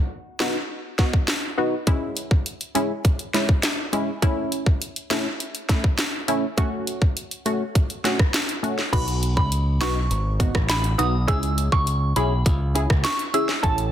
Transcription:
0.40 B3 D#4 F#4, snare
0.99 B3 D#4 F#4, kick, snare
1.13 kick
1.28 snare
1.58 B3 D#4 F#4
1.87 G#3 C#4 E4, kick, closed hi-hat
2.17 closed hi-hat
2.31 kick
2.46 closed hi-hat
2.61 closed hi-hat
2.75 G#3 C#4 E4, closed hi-hat
3.05 kick, closed hi-hat
3.19 closed hi-hat
3.34 G#3 C#4 E4, snare, closed hi-hat
3.49 kick
3.63 snare, closed hi-hat
3.93 G#3 C#4 E4, closed hi-hat
4.22 A3 C#4 E4, kick, closed hi-hat
4.52 closed hi-hat
4.66 kick
4.82 closed hi-hat
4.96 closed hi-hat
5.10 A3 C#4 E4, snare, closed hi-hat
5.40 closed hi-hat
5.55 closed hi-hat
5.69 A3 C#4 E4, kick, snare, closed hi-hat
5.84 kick
5.98 snare, closed hi-hat
6.28 A3 C#4 E4, closed hi-hat
6.57 A3 C#4 F#4, kick, closed hi-hat
6.87 closed hi-hat
7.02 kick
7.17 closed hi-hat
7.31 closed hi-hat
7.46 A3 C#4 F#4, closed hi-hat
7.75 kick, closed hi-hat
7.90 closed hi-hat
8.04 A3 C#4 F#4, snare, closed hi-hat
8.19 kick, cross-stick
8.34 snare, closed hi-hat
8.49 closed hi-hat
8.63 A3 C#4 F#4, closed hi-hat
8.79 snare
8.93 B1 B3 D#4 F#4 B5, kick, closed hi-hat, crash
9.08 closed hi-hat
9.23 closed hi-hat
9.37 C#2 B5, kick
9.52 closed hi-hat
9.81 B1 B3 D#4 F#4 C#6, snare, closed hi-hat
10.11 G#1, closed hi-hat
10.40 B3 D#4 F#4, kick, closed hi-hat
10.55 A1, kick, cross-stick
10.69 B5, snare, closed hi-hat
10.84 closed hi-hat
10.98 B1 B3 D#4 F#4 D#6, closed hi-hat
11.27 C#4 E4 G#4 E6, kick, closed hi-hat
11.43 closed hi-hat
11.58 closed hi-hat
11.72 C#2 C#6, kick
11.87 closed hi-hat
12.16 B1 C#4 E4 G#4 B5, closed hi-hat
12.46 C#2, kick, closed hi-hat
12.75 C#4 E4 G#4, closed hi-hat
12.90 C#2, kick, cross-stick
13.04 C#6, snare, closed hi-hat
13.19 closed hi-hat
13.34 C#4 E4 G#4 E6, closed hi-hat
13.49 snare
13.63 A1 C#4 E4 A4 A5, kick, closed hi-hat
13.78 closed hi-hat

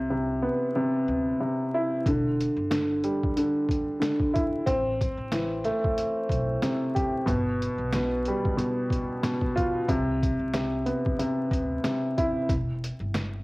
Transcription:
Already playing: C2 C3
0.10 C3
0.42 B3
0.75 C3
1.08 D2
1.40 C3
1.74 E4
2.06 E1 D3, kick, closed hi-hat
2.40 closed hi-hat
2.57 G1
2.71 D3, snare, closed hi-hat
3.04 G3, closed hi-hat
3.23 kick
3.37 D3, closed hi-hat
3.69 kick, closed hi-hat
4.00 D3, snare, closed hi-hat
4.20 kick
4.33 E4, kick, closed hi-hat
4.66 A1 C4, kick, closed hi-hat
5.01 kick, closed hi-hat
5.17 A1
5.32 E3, snare, closed hi-hat
5.64 A3, snare, closed hi-hat
5.84 kick
5.98 closed hi-hat
6.29 B1, kick, closed hi-hat
6.63 C3, snare, closed hi-hat
6.95 G4, kick, closed hi-hat
7.26 G1 B2, kick, closed hi-hat
7.62 closed hi-hat
7.78 B1
7.93 B2, snare, closed hi-hat
8.25 G3, closed hi-hat
8.45 kick
8.57 B2, closed hi-hat
8.90 kick, closed hi-hat
9.23 B2, snare, closed hi-hat
9.41 kick
9.55 F4, kick, closed hi-hat
9.88 C2 C3, kick, closed hi-hat
10.23 kick, closed hi-hat
10.39 C2
10.53 C3, snare, closed hi-hat
10.86 B3, closed hi-hat
11.06 kick
11.19 C3, closed hi-hat
11.51 D2, kick, closed hi-hat
11.84 C3, snare, closed hi-hat
12.18 E4, kick, closed hi-hat
12.49 E1, kick, closed hi-hat
12.84 closed hi-hat
13.00 G1
13.14 snare, closed hi-hat

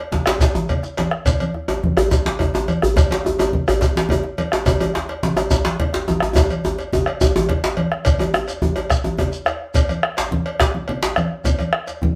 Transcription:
0.12 djembe slap, high conga, djembe bass, low conga
0.26 bombo rim, cowbell, djembe slap, high conga, shekere
0.39 bombo low, cowbell, djembe slap, djembe tone, shekere
0.54 bombo rim, djembe tone, high conga, shekere
0.69 cowbell, djembe slap, high conga, djembe bass, low conga, shekere
0.83 bombo rim, djembe slap, shekere
0.97 cowbell, djembe slap, djembe tone, high conga
1.11 bombo rim
1.25 bombo low, cowbell, djembe slap, djembe bass, low conga, shekere
1.40 cowbell, high conga, shekere
1.54 bombo rim, djembe tone
1.68 cowbell, djembe slap, djembe tone
1.83 djembe slap, high conga, djembe bass, low conga
1.97 bombo rim, cowbell, djembe bass, shekere
2.11 bombo low, cowbell, djembe slap, djembe tone, shekere
2.26 djembe slap, high conga
2.39 cowbell, djembe tone, djembe bass, low conga
2.54 bombo rim, djembe slap, djembe tone
2.68 cowbell, djembe tone, high conga, shekere
2.82 bombo rim, djembe bass
2.96 bombo low, cowbell, djembe slap, djembe tone, low conga, djembe bass, shekere
3.10 cowbell, djembe slap, high conga, shekere
3.25 bombo rim, djembe tone
3.39 cowbell, djembe slap, djembe tone
3.52 djembe slap, high conga, djembe bass, low conga
3.68 bombo rim, cowbell, djembe bass, shekere
3.81 bombo low, cowbell, djembe slap, djembe tone, shekere
3.96 djembe slap, high conga
4.09 cowbell, djembe tone, low conga, djembe bass
4.23 bombo rim, djembe slap
4.38 cowbell, djembe tone, high conga, shekere
4.52 bombo rim, djembe slap
4.66 bombo low, cowbell, djembe slap, djembe tone, djembe bass, low conga, shekere
4.80 cowbell, high conga, djembe tone, shekere
4.94 bombo rim, djembe slap, djembe tone
5.09 cowbell, djembe slap
5.23 djembe slap, high conga, low conga
5.37 bombo rim, cowbell, djembe tone, shekere
5.50 bombo low, cowbell, djembe slap, djembe tone, shekere
5.65 djembe slap, high conga
5.80 cowbell, djembe bass, low conga
5.93 bombo rim, djembe slap
6.08 djembe tone, high conga, shekere
6.20 bombo rim, djembe tone
6.35 bombo rim, bombo low, cowbell, djembe slap, djembe tone, djembe bass, low conga, shekere
6.50 cowbell, djembe slap, high conga, shekere
6.64 djembe slap, djembe tone, shekere
6.78 cowbell, djembe slap, shekere
6.93 djembe slap, djembe tone, low conga, djembe bass, shekere
7.06 bombo rim, cowbell, high conga
7.21 bombo low, cowbell, djembe slap, djembe tone, shekere
7.36 djembe tone, high conga
7.49 bombo rim, cowbell, high conga, djembe bass, low conga
7.64 djembe slap
7.77 cowbell, djembe slap, high conga, djembe tone
7.92 bombo rim, djembe slap, high conga
8.05 bombo rim, bombo low, cowbell, djembe slap, low conga, djembe bass, shekere
8.19 bombo rim, cowbell, high conga, djembe tone, shekere
8.34 bombo rim, djembe tone
8.48 cowbell, djembe slap, shekere
8.62 djembe tone, high conga, djembe bass, low conga
8.76 cowbell, djembe tone
8.90 bombo rim, bombo low, cowbell, djembe slap, shekere
9.04 djembe tone, high conga
9.18 bombo rim, cowbell, djembe slap, djembe tone, djembe bass, low conga
9.32 djembe slap, shekere
9.46 bombo rim, cowbell, djembe tone, shekere
9.74 bombo rim, bombo low, cowbell, djembe slap, djembe bass, low conga, shekere
9.88 bombo rim, cowbell, djembe tone, high conga, shekere
10.03 bombo rim
10.17 cowbell, djembe slap, shekere
10.31 high conga, djembe bass, low conga
10.46 cowbell
10.59 bombo rim, bombo low, cowbell, djembe slap, shekere
10.74 djembe tone, high conga
10.88 bombo rim, cowbell, low conga
11.02 djembe slap, shekere
11.16 bombo rim, cowbell, djembe tone, high conga, shekere
11.44 bombo rim, bombo low, cowbell, djembe slap, djembe bass, low conga, shekere
11.59 bombo rim, cowbell, djembe tone, high conga, shekere
11.73 bombo rim, djembe slap
11.87 cowbell, djembe slap, shekere
12.02 djembe tone, high conga, djembe bass, low conga

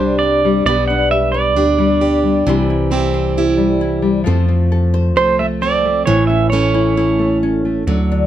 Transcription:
Already playing: C2 C3 C4 D4 G4 C5
0.00 G3
0.19 D5
0.23 D4
0.45 G3
0.65 B1 B2 G3 B3 D4 G4 B4 D5
0.88 D4 F#5
1.11 G4 E5
1.32 B4 D5
1.56 D2 D4 G4
1.78 G3
2.01 D4 G4
2.24 G3
2.47 C2 C3 E3 G3 E4 G4 C5
2.70 E4
2.91 C4 E4 G4
3.14 C5
3.37 E4 G4
3.57 G3
3.81 E4
4.02 G3
4.24 F2 F3 A3 C4 A4 C5
4.49 C4
4.72 A4
4.94 C5
5.16 C2 A3 A4 C5
5.39 A3 E5
5.62 C4 D5
5.85 A3
6.06 A1 A2 E3 C#5
6.27 C#4 E5
6.50 E3 A3 C#4 C#5
6.54 E4
6.74 E4
6.97 A3 E4
7.19 A3
7.43 C#4
7.65 A3
7.87 D2 D3 F#3
8.12 D4

